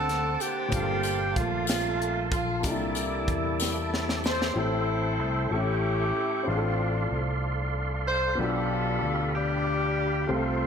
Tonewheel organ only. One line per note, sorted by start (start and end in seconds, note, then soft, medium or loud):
0.00 0.70 C5 medium
0.00 0.71 F#5 medium
0.00 4.51 A5 medium
0.00 0.68 D6 medium
0.73 4.52 A4 medium
0.73 2.62 F5 medium
0.73 2.62 C6 medium
2.64 4.53 E5 medium
2.64 4.54 D6 medium
4.56 5.50 A4 medium
4.56 6.45 E5 medium
4.56 6.45 G5 medium
4.56 5.51 C6 medium
5.51 8.35 A4 medium
5.51 6.46 C#6 medium
6.47 10.25 D5 medium
6.47 10.67 F5 medium
6.47 8.36 C6 medium
8.37 10.26 G4 medium
8.37 10.27 B5 medium
10.29 10.67 A4 medium
10.29 10.67 C5 medium
10.29 10.67 C6 medium